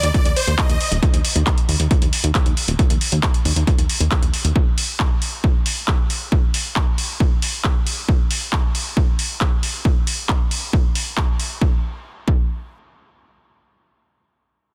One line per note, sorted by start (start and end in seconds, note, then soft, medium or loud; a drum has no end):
0.03 0.11 D#2 medium
0.03 closed hi-hat medium
0.14 0.30 D5 medium
0.14 kick loud
0.14 closed hi-hat medium
0.25 0.33 D#2 medium
0.25 closed hi-hat medium
0.36 0.52 C5 medium
0.36 open hi-hat loud
0.48 0.55 D#2 medium
0.48 closed hi-hat medium
0.58 0.90 D#5 loud
0.58 kick loud
0.58 clap loud
0.58 closed hi-hat medium
0.69 0.77 D#2 medium
0.69 closed hi-hat medium
0.81 open hi-hat medium
0.92 0.99 D#1 medium
0.92 closed hi-hat medium
1.03 kick loud
1.03 closed hi-hat medium
1.14 1.21 D#2 medium
1.14 closed hi-hat medium
1.25 open hi-hat loud
1.36 1.43 D#2 medium
1.36 closed hi-hat medium
1.47 kick loud
1.47 clap loud
1.47 closed hi-hat medium
1.58 closed hi-hat medium
1.69 1.76 D#2 medium
1.69 open hi-hat medium
1.80 1.87 D#2 medium
1.80 closed hi-hat medium
1.91 kick loud
1.91 closed hi-hat medium
2.02 2.09 D#2 medium
2.02 closed hi-hat medium
2.13 open hi-hat loud
2.24 2.31 D#2 medium
2.24 closed hi-hat medium
2.35 kick loud
2.35 clap loud
2.35 closed hi-hat medium
2.46 2.53 D#2 medium
2.46 closed hi-hat medium
2.57 open hi-hat loud
2.68 2.76 D#1 medium
2.68 closed hi-hat medium
2.79 kick loud
2.79 closed hi-hat medium
2.90 2.98 D#2 medium
2.90 closed hi-hat medium
3.01 open hi-hat loud
3.12 3.20 D#2 medium
3.12 closed hi-hat medium
3.23 kick loud
3.23 clap loud
3.23 closed hi-hat medium
3.34 closed hi-hat medium
3.45 3.53 D#2 medium
3.45 open hi-hat loud
3.56 3.64 D#2 medium
3.56 closed hi-hat medium
3.67 kick loud
3.67 closed hi-hat medium
3.78 3.86 D#2 medium
3.78 closed hi-hat medium
3.89 open hi-hat loud
4.00 4.08 D#2 medium
4.00 closed hi-hat medium
4.11 kick loud
4.11 clap loud
4.11 closed hi-hat medium
4.22 4.30 D#2 medium
4.22 closed hi-hat medium
4.34 open hi-hat medium
4.45 4.52 D#2 medium
4.45 closed hi-hat medium
4.56 kick loud
4.78 open hi-hat loud
5.00 kick loud
5.00 clap loud
5.22 open hi-hat medium
5.44 kick loud
5.66 open hi-hat loud
5.88 kick loud
5.88 clap loud
6.10 open hi-hat medium
6.32 kick loud
6.54 open hi-hat loud
6.76 kick loud
6.76 clap loud
6.98 open hi-hat medium
7.20 kick loud
7.42 open hi-hat loud
7.64 kick loud
7.64 clap loud
7.87 open hi-hat medium
8.09 kick loud
8.31 open hi-hat loud
8.53 kick loud
8.53 clap loud
8.75 open hi-hat medium
8.97 kick loud
9.19 open hi-hat loud
9.41 kick loud
9.41 clap loud
9.63 open hi-hat medium
9.85 kick loud
10.07 open hi-hat loud
10.29 kick loud
10.29 clap loud
10.51 open hi-hat medium
10.73 kick loud
10.95 open hi-hat medium
11.17 kick loud
11.17 clap loud
11.40 open hi-hat medium
11.61 kick loud
12.28 kick loud